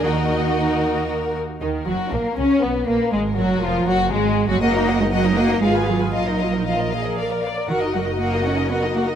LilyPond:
<<
  \new Staff \with { instrumentName = "Violin section" } { \time 3/4 \key ees \minor \tempo 4 = 118 <ges' bes'>2~ <ges' bes'>8 r8 | ees'8 ges'8 bes8 des'8 ces'8 bes8 | aes8 ges'8 f'8 ges'8 aes8. ges'16 | <ees'' ges''>16 <bes' ees''>16 <ees'' ges''>16 <bes' ees''>16 <ees'' ges''>16 <bes' ees''>16 <ees'' ges''>16 <bes' ees''>16 <aes' f''>16 <ces'' aes''>16 <aes' f''>16 <ces'' aes''>16 |
<ees'' f''>16 <bes' ees''>16 <ees'' f''>16 <bes' ees''>16 <ees'' f''>16 <bes' ees''>16 <ees'' f''>16 <bes' ees''>16 <d'' f''>16 <bes' d''>16 <d'' f''>16 <bes' d''>16 | <ges' ges''>16 <bes' ees''>16 <ges' ges''>16 <bes' ees''>16 <ges' ges''>16 <bes' ees''>16 <ges' ges''>16 <bes' ees''>16 <ges' ges''>16 <bes' ees''>16 <ges' ges''>16 <bes' ees''>16 | }
  \new Staff \with { instrumentName = "Violin section" } { \time 3/4 \key ees \minor ees''2 r4 | bes'2 ces''4 | bes'2 aes'4 | ges'4 bes'4 ces''4 |
bes'2~ bes'8 r8 | ees''2. | }
  \new Staff \with { instrumentName = "Viola section" } { \time 3/4 \key ees \minor <bes ees'>2~ <bes ees'>8 r8 | ees8 ges8 bes8 des'8 ces'8 bes8 | aes8 ges8 f8 ges8 aes8. ges16 | <bes ges'>16 ees'16 <bes ges'>16 ees'16 <bes ges'>16 ees'16 <bes ges'>16 ees'16 <f' aes'>16 <f' aes'>16 <f' aes'>16 <f' aes'>16 |
f'16 ees'16 f'16 ees'16 f'8 aes'8 bes'8 d''8 | <ges' bes'>16 <ees' ges'>16 <ges' bes'>16 <ees' ges'>16 <ges' bes'>16 <ees' ges'>16 <ges' bes'>16 <ees' ges'>16 <ges' bes'>16 <ees' ges'>16 <ges' bes'>16 <ees' ges'>16 | }
  \new Staff \with { instrumentName = "Cello section" } { \clef bass \time 3/4 \key ees \minor ees2 r4 | ees8 ges8 bes8 des'8 ces'8 bes8 | aes8 ges8 f8 ges8 aes8. ges16 | bes8. aes16 ges8 bes8 aes8 ges8 |
ges4 f4. r8 | ees8 ges8 bes8 des'8 ces'8 bes8 | }
  \new Staff \with { instrumentName = "Double bass section" } { \clef bass \time 3/4 \key ees \minor ees,2~ ees,8 r8 | ees,8 ges,,8 bes,,8 des,8 ces,8 bes,,8 | aes,,8 ges,,8 f,,8 ges,,8 aes,,8. ges,,16 | ges,,2 aes,,4 |
bes,,2~ bes,,8 r8 | ges,,2. | }
>>